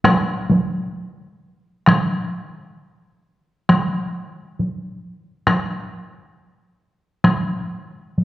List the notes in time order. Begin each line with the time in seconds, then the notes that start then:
0.04 taiko rim, taiko high
0.50 taiko high
1.88 taiko rim, taiko high
3.69 taiko rim, taiko high
4.60 taiko high
5.47 taiko rim, taiko high
7.24 taiko rim, taiko high
8.18 taiko high